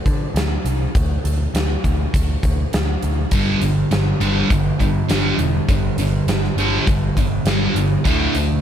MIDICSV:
0, 0, Header, 1, 4, 480
1, 0, Start_track
1, 0, Tempo, 592885
1, 759, Time_signature, 4, 2, 24, 8
1, 6973, End_track
2, 0, Start_track
2, 0, Title_t, "Distorted electric guitar"
2, 0, Program_c, 0, 30
2, 2695, Note_on_c, 0, 43, 73
2, 2697, Note_on_c, 0, 50, 84
2, 2704, Note_on_c, 0, 55, 86
2, 2913, Note_off_c, 0, 43, 0
2, 2914, Note_off_c, 0, 50, 0
2, 2917, Note_off_c, 0, 55, 0
2, 2928, Note_on_c, 0, 43, 58
2, 2934, Note_on_c, 0, 50, 56
2, 3140, Note_off_c, 0, 43, 0
2, 3142, Note_off_c, 0, 50, 0
2, 3167, Note_on_c, 0, 43, 56
2, 3171, Note_on_c, 0, 50, 58
2, 3379, Note_off_c, 0, 43, 0
2, 3381, Note_off_c, 0, 50, 0
2, 3403, Note_on_c, 0, 43, 74
2, 3407, Note_on_c, 0, 50, 79
2, 3411, Note_on_c, 0, 55, 87
2, 3627, Note_off_c, 0, 43, 0
2, 3628, Note_off_c, 0, 50, 0
2, 3630, Note_off_c, 0, 55, 0
2, 3647, Note_on_c, 0, 43, 64
2, 3650, Note_on_c, 0, 50, 66
2, 3859, Note_off_c, 0, 43, 0
2, 3860, Note_off_c, 0, 50, 0
2, 3889, Note_on_c, 0, 43, 64
2, 3894, Note_on_c, 0, 50, 65
2, 4100, Note_off_c, 0, 43, 0
2, 4102, Note_off_c, 0, 50, 0
2, 4123, Note_on_c, 0, 43, 74
2, 4131, Note_on_c, 0, 50, 85
2, 4139, Note_on_c, 0, 55, 82
2, 4346, Note_off_c, 0, 43, 0
2, 4350, Note_off_c, 0, 50, 0
2, 4354, Note_off_c, 0, 55, 0
2, 4366, Note_on_c, 0, 43, 59
2, 4366, Note_on_c, 0, 50, 60
2, 4578, Note_off_c, 0, 43, 0
2, 4578, Note_off_c, 0, 50, 0
2, 4606, Note_on_c, 0, 43, 66
2, 4613, Note_on_c, 0, 50, 68
2, 4818, Note_off_c, 0, 43, 0
2, 4821, Note_off_c, 0, 50, 0
2, 4850, Note_on_c, 0, 43, 61
2, 4851, Note_on_c, 0, 50, 65
2, 5060, Note_off_c, 0, 43, 0
2, 5060, Note_off_c, 0, 50, 0
2, 5089, Note_on_c, 0, 43, 59
2, 5093, Note_on_c, 0, 50, 67
2, 5299, Note_off_c, 0, 43, 0
2, 5301, Note_off_c, 0, 50, 0
2, 5327, Note_on_c, 0, 43, 82
2, 5331, Note_on_c, 0, 50, 80
2, 5338, Note_on_c, 0, 55, 87
2, 5548, Note_off_c, 0, 43, 0
2, 5550, Note_off_c, 0, 50, 0
2, 5553, Note_off_c, 0, 55, 0
2, 5569, Note_on_c, 0, 43, 61
2, 5573, Note_on_c, 0, 50, 69
2, 5779, Note_off_c, 0, 43, 0
2, 5781, Note_off_c, 0, 50, 0
2, 5809, Note_on_c, 0, 43, 61
2, 5814, Note_on_c, 0, 50, 68
2, 6019, Note_off_c, 0, 43, 0
2, 6021, Note_off_c, 0, 50, 0
2, 6045, Note_on_c, 0, 43, 75
2, 6049, Note_on_c, 0, 50, 76
2, 6058, Note_on_c, 0, 55, 85
2, 6266, Note_off_c, 0, 43, 0
2, 6268, Note_off_c, 0, 50, 0
2, 6273, Note_off_c, 0, 55, 0
2, 6287, Note_on_c, 0, 43, 53
2, 6289, Note_on_c, 0, 50, 63
2, 6497, Note_off_c, 0, 43, 0
2, 6499, Note_off_c, 0, 50, 0
2, 6511, Note_on_c, 0, 50, 81
2, 6522, Note_on_c, 0, 57, 75
2, 6525, Note_on_c, 0, 64, 86
2, 6739, Note_off_c, 0, 50, 0
2, 6745, Note_off_c, 0, 57, 0
2, 6746, Note_off_c, 0, 64, 0
2, 6759, Note_on_c, 0, 50, 55
2, 6762, Note_on_c, 0, 57, 60
2, 6973, Note_off_c, 0, 50, 0
2, 6973, Note_off_c, 0, 57, 0
2, 6973, End_track
3, 0, Start_track
3, 0, Title_t, "Picked electric bass"
3, 0, Program_c, 1, 34
3, 48, Note_on_c, 1, 50, 68
3, 217, Note_off_c, 1, 50, 0
3, 279, Note_on_c, 1, 38, 76
3, 451, Note_off_c, 1, 38, 0
3, 523, Note_on_c, 1, 36, 70
3, 694, Note_off_c, 1, 36, 0
3, 773, Note_on_c, 1, 38, 80
3, 940, Note_off_c, 1, 38, 0
3, 1006, Note_on_c, 1, 38, 74
3, 1176, Note_off_c, 1, 38, 0
3, 1246, Note_on_c, 1, 38, 73
3, 1416, Note_off_c, 1, 38, 0
3, 1491, Note_on_c, 1, 38, 79
3, 1659, Note_off_c, 1, 38, 0
3, 1733, Note_on_c, 1, 38, 79
3, 1901, Note_off_c, 1, 38, 0
3, 1969, Note_on_c, 1, 38, 76
3, 2138, Note_off_c, 1, 38, 0
3, 2218, Note_on_c, 1, 38, 75
3, 2384, Note_off_c, 1, 38, 0
3, 2453, Note_on_c, 1, 38, 69
3, 2621, Note_off_c, 1, 38, 0
3, 2682, Note_on_c, 1, 31, 72
3, 2854, Note_off_c, 1, 31, 0
3, 2928, Note_on_c, 1, 31, 72
3, 3097, Note_off_c, 1, 31, 0
3, 3164, Note_on_c, 1, 31, 72
3, 3335, Note_off_c, 1, 31, 0
3, 3403, Note_on_c, 1, 31, 77
3, 3574, Note_off_c, 1, 31, 0
3, 3649, Note_on_c, 1, 31, 78
3, 3818, Note_off_c, 1, 31, 0
3, 3886, Note_on_c, 1, 43, 75
3, 4056, Note_off_c, 1, 43, 0
3, 4126, Note_on_c, 1, 31, 77
3, 4296, Note_off_c, 1, 31, 0
3, 4356, Note_on_c, 1, 28, 70
3, 4530, Note_off_c, 1, 28, 0
3, 4606, Note_on_c, 1, 31, 76
3, 4776, Note_off_c, 1, 31, 0
3, 4838, Note_on_c, 1, 31, 81
3, 5010, Note_off_c, 1, 31, 0
3, 5074, Note_on_c, 1, 31, 77
3, 5248, Note_off_c, 1, 31, 0
3, 5312, Note_on_c, 1, 31, 77
3, 5487, Note_off_c, 1, 31, 0
3, 5566, Note_on_c, 1, 31, 83
3, 5735, Note_off_c, 1, 31, 0
3, 5803, Note_on_c, 1, 31, 78
3, 5973, Note_off_c, 1, 31, 0
3, 6028, Note_on_c, 1, 31, 77
3, 6204, Note_off_c, 1, 31, 0
3, 6268, Note_on_c, 1, 31, 78
3, 6443, Note_off_c, 1, 31, 0
3, 6521, Note_on_c, 1, 38, 79
3, 6691, Note_off_c, 1, 38, 0
3, 6757, Note_on_c, 1, 38, 81
3, 6929, Note_off_c, 1, 38, 0
3, 6973, End_track
4, 0, Start_track
4, 0, Title_t, "Drums"
4, 47, Note_on_c, 9, 36, 78
4, 49, Note_on_c, 9, 42, 47
4, 128, Note_off_c, 9, 36, 0
4, 130, Note_off_c, 9, 42, 0
4, 292, Note_on_c, 9, 42, 74
4, 301, Note_on_c, 9, 38, 92
4, 373, Note_off_c, 9, 42, 0
4, 382, Note_off_c, 9, 38, 0
4, 531, Note_on_c, 9, 42, 55
4, 612, Note_off_c, 9, 42, 0
4, 769, Note_on_c, 9, 36, 89
4, 771, Note_on_c, 9, 42, 71
4, 850, Note_off_c, 9, 36, 0
4, 852, Note_off_c, 9, 42, 0
4, 1012, Note_on_c, 9, 42, 54
4, 1093, Note_off_c, 9, 42, 0
4, 1253, Note_on_c, 9, 42, 76
4, 1262, Note_on_c, 9, 38, 90
4, 1334, Note_off_c, 9, 42, 0
4, 1343, Note_off_c, 9, 38, 0
4, 1491, Note_on_c, 9, 36, 64
4, 1495, Note_on_c, 9, 42, 51
4, 1572, Note_off_c, 9, 36, 0
4, 1576, Note_off_c, 9, 42, 0
4, 1732, Note_on_c, 9, 36, 95
4, 1734, Note_on_c, 9, 42, 78
4, 1813, Note_off_c, 9, 36, 0
4, 1815, Note_off_c, 9, 42, 0
4, 1969, Note_on_c, 9, 36, 73
4, 1970, Note_on_c, 9, 42, 51
4, 2050, Note_off_c, 9, 36, 0
4, 2051, Note_off_c, 9, 42, 0
4, 2210, Note_on_c, 9, 42, 72
4, 2219, Note_on_c, 9, 38, 95
4, 2291, Note_off_c, 9, 42, 0
4, 2300, Note_off_c, 9, 38, 0
4, 2449, Note_on_c, 9, 42, 54
4, 2530, Note_off_c, 9, 42, 0
4, 2682, Note_on_c, 9, 42, 70
4, 2686, Note_on_c, 9, 36, 90
4, 2763, Note_off_c, 9, 42, 0
4, 2767, Note_off_c, 9, 36, 0
4, 2926, Note_on_c, 9, 42, 56
4, 3007, Note_off_c, 9, 42, 0
4, 3169, Note_on_c, 9, 42, 68
4, 3178, Note_on_c, 9, 38, 92
4, 3250, Note_off_c, 9, 42, 0
4, 3259, Note_off_c, 9, 38, 0
4, 3408, Note_on_c, 9, 42, 49
4, 3489, Note_off_c, 9, 42, 0
4, 3646, Note_on_c, 9, 36, 103
4, 3650, Note_on_c, 9, 42, 75
4, 3727, Note_off_c, 9, 36, 0
4, 3731, Note_off_c, 9, 42, 0
4, 3887, Note_on_c, 9, 36, 71
4, 3891, Note_on_c, 9, 42, 50
4, 3968, Note_off_c, 9, 36, 0
4, 3972, Note_off_c, 9, 42, 0
4, 4125, Note_on_c, 9, 42, 69
4, 4134, Note_on_c, 9, 38, 90
4, 4206, Note_off_c, 9, 42, 0
4, 4215, Note_off_c, 9, 38, 0
4, 4363, Note_on_c, 9, 42, 50
4, 4444, Note_off_c, 9, 42, 0
4, 4603, Note_on_c, 9, 36, 89
4, 4604, Note_on_c, 9, 42, 63
4, 4684, Note_off_c, 9, 36, 0
4, 4685, Note_off_c, 9, 42, 0
4, 4841, Note_on_c, 9, 42, 53
4, 4922, Note_off_c, 9, 42, 0
4, 5085, Note_on_c, 9, 42, 69
4, 5094, Note_on_c, 9, 38, 97
4, 5166, Note_off_c, 9, 42, 0
4, 5175, Note_off_c, 9, 38, 0
4, 5215, Note_on_c, 9, 38, 26
4, 5296, Note_off_c, 9, 38, 0
4, 5328, Note_on_c, 9, 42, 50
4, 5409, Note_off_c, 9, 42, 0
4, 5564, Note_on_c, 9, 42, 77
4, 5565, Note_on_c, 9, 36, 101
4, 5645, Note_off_c, 9, 42, 0
4, 5646, Note_off_c, 9, 36, 0
4, 5803, Note_on_c, 9, 36, 74
4, 5806, Note_on_c, 9, 42, 55
4, 5884, Note_off_c, 9, 36, 0
4, 5887, Note_off_c, 9, 42, 0
4, 6036, Note_on_c, 9, 42, 74
4, 6045, Note_on_c, 9, 38, 93
4, 6117, Note_off_c, 9, 42, 0
4, 6126, Note_off_c, 9, 38, 0
4, 6282, Note_on_c, 9, 42, 59
4, 6363, Note_off_c, 9, 42, 0
4, 6520, Note_on_c, 9, 36, 92
4, 6520, Note_on_c, 9, 42, 70
4, 6601, Note_off_c, 9, 36, 0
4, 6601, Note_off_c, 9, 42, 0
4, 6757, Note_on_c, 9, 42, 55
4, 6838, Note_off_c, 9, 42, 0
4, 6973, End_track
0, 0, End_of_file